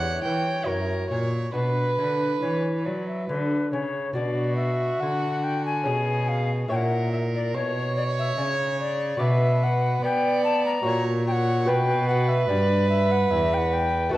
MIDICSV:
0, 0, Header, 1, 5, 480
1, 0, Start_track
1, 0, Key_signature, 2, "minor"
1, 0, Tempo, 863309
1, 857, Time_signature, 3, 2, 24, 8
1, 3257, Tempo, 828729
1, 8074, End_track
2, 0, Start_track
2, 0, Title_t, "Recorder"
2, 0, Program_c, 0, 74
2, 0, Note_on_c, 0, 73, 66
2, 713, Note_off_c, 0, 73, 0
2, 857, Note_on_c, 0, 71, 58
2, 1286, Note_off_c, 0, 71, 0
2, 1340, Note_on_c, 0, 73, 55
2, 1586, Note_on_c, 0, 74, 53
2, 1594, Note_off_c, 0, 73, 0
2, 1708, Note_off_c, 0, 74, 0
2, 1710, Note_on_c, 0, 76, 56
2, 1820, Note_off_c, 0, 76, 0
2, 1824, Note_on_c, 0, 71, 75
2, 2052, Note_off_c, 0, 71, 0
2, 2066, Note_on_c, 0, 73, 74
2, 2299, Note_off_c, 0, 73, 0
2, 2302, Note_on_c, 0, 74, 70
2, 2535, Note_off_c, 0, 74, 0
2, 2538, Note_on_c, 0, 76, 74
2, 2783, Note_on_c, 0, 78, 77
2, 2791, Note_off_c, 0, 76, 0
2, 3023, Note_on_c, 0, 79, 89
2, 3032, Note_off_c, 0, 78, 0
2, 3141, Note_off_c, 0, 79, 0
2, 3145, Note_on_c, 0, 80, 77
2, 3505, Note_on_c, 0, 77, 80
2, 3514, Note_off_c, 0, 80, 0
2, 3641, Note_off_c, 0, 77, 0
2, 3751, Note_on_c, 0, 79, 71
2, 3779, Note_on_c, 0, 78, 77
2, 3785, Note_off_c, 0, 79, 0
2, 3985, Note_off_c, 0, 78, 0
2, 3991, Note_on_c, 0, 76, 74
2, 4026, Note_off_c, 0, 76, 0
2, 4120, Note_on_c, 0, 74, 74
2, 4232, Note_off_c, 0, 74, 0
2, 4241, Note_on_c, 0, 73, 86
2, 4471, Note_off_c, 0, 73, 0
2, 4479, Note_on_c, 0, 74, 87
2, 4514, Note_off_c, 0, 74, 0
2, 4607, Note_on_c, 0, 76, 79
2, 4720, Note_on_c, 0, 74, 71
2, 4729, Note_off_c, 0, 76, 0
2, 4748, Note_on_c, 0, 73, 77
2, 4753, Note_off_c, 0, 74, 0
2, 4956, Note_off_c, 0, 73, 0
2, 4961, Note_on_c, 0, 74, 88
2, 5195, Note_on_c, 0, 76, 96
2, 5204, Note_off_c, 0, 74, 0
2, 5444, Note_on_c, 0, 78, 84
2, 5453, Note_off_c, 0, 76, 0
2, 5677, Note_off_c, 0, 78, 0
2, 5682, Note_on_c, 0, 79, 82
2, 5910, Note_off_c, 0, 79, 0
2, 5913, Note_on_c, 0, 81, 93
2, 6029, Note_off_c, 0, 81, 0
2, 6039, Note_on_c, 0, 82, 81
2, 6259, Note_off_c, 0, 82, 0
2, 6396, Note_on_c, 0, 79, 84
2, 6422, Note_on_c, 0, 78, 92
2, 6428, Note_off_c, 0, 79, 0
2, 6628, Note_on_c, 0, 79, 103
2, 6636, Note_off_c, 0, 78, 0
2, 6860, Note_off_c, 0, 79, 0
2, 6863, Note_on_c, 0, 78, 88
2, 6980, Note_on_c, 0, 76, 90
2, 6989, Note_off_c, 0, 78, 0
2, 7095, Note_on_c, 0, 74, 91
2, 7104, Note_off_c, 0, 76, 0
2, 7334, Note_off_c, 0, 74, 0
2, 7337, Note_on_c, 0, 76, 91
2, 7463, Note_on_c, 0, 78, 92
2, 7472, Note_off_c, 0, 76, 0
2, 7573, Note_on_c, 0, 76, 105
2, 7582, Note_off_c, 0, 78, 0
2, 7707, Note_on_c, 0, 79, 80
2, 7715, Note_off_c, 0, 76, 0
2, 7729, Note_on_c, 0, 78, 87
2, 7735, Note_off_c, 0, 79, 0
2, 7818, Note_on_c, 0, 79, 102
2, 7827, Note_off_c, 0, 78, 0
2, 8050, Note_off_c, 0, 79, 0
2, 8053, Note_on_c, 0, 81, 107
2, 8074, Note_off_c, 0, 81, 0
2, 8074, End_track
3, 0, Start_track
3, 0, Title_t, "Violin"
3, 0, Program_c, 1, 40
3, 0, Note_on_c, 1, 78, 80
3, 131, Note_off_c, 1, 78, 0
3, 134, Note_on_c, 1, 79, 67
3, 367, Note_on_c, 1, 70, 69
3, 375, Note_off_c, 1, 79, 0
3, 607, Note_off_c, 1, 70, 0
3, 611, Note_on_c, 1, 73, 63
3, 850, Note_off_c, 1, 73, 0
3, 862, Note_on_c, 1, 71, 80
3, 1814, Note_off_c, 1, 71, 0
3, 2318, Note_on_c, 1, 66, 77
3, 3264, Note_on_c, 1, 68, 67
3, 3272, Note_off_c, 1, 66, 0
3, 3747, Note_off_c, 1, 68, 0
3, 3750, Note_on_c, 1, 70, 70
3, 4233, Note_on_c, 1, 73, 89
3, 4241, Note_off_c, 1, 70, 0
3, 5187, Note_off_c, 1, 73, 0
3, 5191, Note_on_c, 1, 71, 69
3, 5666, Note_on_c, 1, 74, 86
3, 5675, Note_off_c, 1, 71, 0
3, 6149, Note_off_c, 1, 74, 0
3, 6156, Note_on_c, 1, 73, 74
3, 6389, Note_off_c, 1, 73, 0
3, 6394, Note_on_c, 1, 73, 78
3, 6631, Note_on_c, 1, 71, 94
3, 6640, Note_off_c, 1, 73, 0
3, 8068, Note_off_c, 1, 71, 0
3, 8074, End_track
4, 0, Start_track
4, 0, Title_t, "Lute"
4, 0, Program_c, 2, 24
4, 0, Note_on_c, 2, 40, 43
4, 0, Note_on_c, 2, 59, 38
4, 0, Note_on_c, 2, 64, 43
4, 0, Note_on_c, 2, 67, 42
4, 116, Note_off_c, 2, 40, 0
4, 140, Note_on_c, 2, 52, 45
4, 345, Note_off_c, 2, 64, 0
4, 349, Note_off_c, 2, 59, 0
4, 352, Note_on_c, 2, 64, 35
4, 355, Note_off_c, 2, 52, 0
4, 358, Note_off_c, 2, 67, 0
4, 361, Note_on_c, 2, 66, 41
4, 379, Note_on_c, 2, 42, 43
4, 595, Note_off_c, 2, 42, 0
4, 620, Note_on_c, 2, 46, 50
4, 830, Note_off_c, 2, 64, 0
4, 835, Note_off_c, 2, 66, 0
4, 837, Note_off_c, 2, 46, 0
4, 848, Note_on_c, 2, 62, 36
4, 855, Note_on_c, 2, 66, 36
4, 862, Note_on_c, 2, 47, 42
4, 1080, Note_off_c, 2, 47, 0
4, 1104, Note_on_c, 2, 50, 44
4, 1323, Note_off_c, 2, 50, 0
4, 1349, Note_on_c, 2, 52, 42
4, 1568, Note_off_c, 2, 52, 0
4, 1591, Note_on_c, 2, 54, 39
4, 1810, Note_off_c, 2, 54, 0
4, 1830, Note_on_c, 2, 50, 43
4, 2050, Note_off_c, 2, 50, 0
4, 2075, Note_on_c, 2, 49, 50
4, 2285, Note_off_c, 2, 62, 0
4, 2289, Note_off_c, 2, 66, 0
4, 2291, Note_off_c, 2, 49, 0
4, 2298, Note_on_c, 2, 62, 41
4, 2307, Note_on_c, 2, 66, 45
4, 2315, Note_on_c, 2, 47, 44
4, 2766, Note_off_c, 2, 47, 0
4, 2794, Note_on_c, 2, 50, 49
4, 3229, Note_off_c, 2, 62, 0
4, 3234, Note_off_c, 2, 66, 0
4, 3240, Note_off_c, 2, 50, 0
4, 3245, Note_on_c, 2, 61, 44
4, 3256, Note_on_c, 2, 68, 42
4, 3263, Note_on_c, 2, 47, 45
4, 3723, Note_off_c, 2, 47, 0
4, 3723, Note_off_c, 2, 61, 0
4, 3728, Note_off_c, 2, 68, 0
4, 3735, Note_on_c, 2, 64, 45
4, 3741, Note_on_c, 2, 73, 47
4, 3752, Note_on_c, 2, 46, 48
4, 4209, Note_off_c, 2, 46, 0
4, 4230, Note_on_c, 2, 47, 54
4, 4688, Note_off_c, 2, 47, 0
4, 4714, Note_on_c, 2, 49, 49
4, 5162, Note_off_c, 2, 64, 0
4, 5165, Note_off_c, 2, 73, 0
4, 5169, Note_off_c, 2, 49, 0
4, 5174, Note_on_c, 2, 66, 44
4, 5185, Note_on_c, 2, 74, 51
4, 5192, Note_on_c, 2, 47, 52
4, 5647, Note_off_c, 2, 47, 0
4, 5677, Note_on_c, 2, 59, 59
4, 6119, Note_off_c, 2, 66, 0
4, 6125, Note_off_c, 2, 74, 0
4, 6131, Note_off_c, 2, 59, 0
4, 6135, Note_on_c, 2, 66, 51
4, 6144, Note_on_c, 2, 73, 46
4, 6153, Note_on_c, 2, 46, 61
4, 6606, Note_off_c, 2, 66, 0
4, 6608, Note_off_c, 2, 46, 0
4, 6612, Note_off_c, 2, 73, 0
4, 6613, Note_on_c, 2, 66, 52
4, 6622, Note_on_c, 2, 71, 52
4, 6630, Note_on_c, 2, 47, 56
4, 7082, Note_off_c, 2, 47, 0
4, 7102, Note_on_c, 2, 43, 62
4, 7555, Note_off_c, 2, 43, 0
4, 7575, Note_on_c, 2, 40, 62
4, 8024, Note_off_c, 2, 66, 0
4, 8026, Note_on_c, 2, 57, 58
4, 8029, Note_off_c, 2, 71, 0
4, 8030, Note_off_c, 2, 40, 0
4, 8035, Note_on_c, 2, 66, 55
4, 8047, Note_on_c, 2, 71, 56
4, 8055, Note_on_c, 2, 39, 60
4, 8074, Note_off_c, 2, 39, 0
4, 8074, Note_off_c, 2, 57, 0
4, 8074, Note_off_c, 2, 66, 0
4, 8074, Note_off_c, 2, 71, 0
4, 8074, End_track
5, 0, Start_track
5, 0, Title_t, "Cello"
5, 0, Program_c, 3, 42
5, 0, Note_on_c, 3, 40, 59
5, 133, Note_off_c, 3, 40, 0
5, 139, Note_on_c, 3, 52, 49
5, 372, Note_off_c, 3, 52, 0
5, 374, Note_on_c, 3, 42, 52
5, 610, Note_off_c, 3, 42, 0
5, 620, Note_on_c, 3, 46, 58
5, 854, Note_off_c, 3, 46, 0
5, 858, Note_on_c, 3, 47, 55
5, 1095, Note_off_c, 3, 47, 0
5, 1105, Note_on_c, 3, 50, 55
5, 1341, Note_off_c, 3, 50, 0
5, 1347, Note_on_c, 3, 52, 56
5, 1588, Note_on_c, 3, 54, 51
5, 1596, Note_off_c, 3, 52, 0
5, 1830, Note_off_c, 3, 54, 0
5, 1836, Note_on_c, 3, 50, 50
5, 2071, Note_off_c, 3, 50, 0
5, 2079, Note_on_c, 3, 49, 47
5, 2310, Note_off_c, 3, 49, 0
5, 2315, Note_on_c, 3, 47, 65
5, 2766, Note_off_c, 3, 47, 0
5, 2791, Note_on_c, 3, 50, 60
5, 3266, Note_on_c, 3, 47, 68
5, 3275, Note_off_c, 3, 50, 0
5, 3748, Note_off_c, 3, 47, 0
5, 3751, Note_on_c, 3, 46, 66
5, 4233, Note_on_c, 3, 47, 61
5, 4242, Note_off_c, 3, 46, 0
5, 4713, Note_off_c, 3, 47, 0
5, 4717, Note_on_c, 3, 49, 60
5, 5184, Note_off_c, 3, 49, 0
5, 5192, Note_on_c, 3, 47, 70
5, 5660, Note_off_c, 3, 47, 0
5, 5672, Note_on_c, 3, 59, 65
5, 6142, Note_off_c, 3, 59, 0
5, 6151, Note_on_c, 3, 46, 72
5, 6630, Note_on_c, 3, 47, 83
5, 6638, Note_off_c, 3, 46, 0
5, 7101, Note_off_c, 3, 47, 0
5, 7105, Note_on_c, 3, 43, 78
5, 7570, Note_off_c, 3, 43, 0
5, 7579, Note_on_c, 3, 40, 72
5, 8046, Note_off_c, 3, 40, 0
5, 8074, End_track
0, 0, End_of_file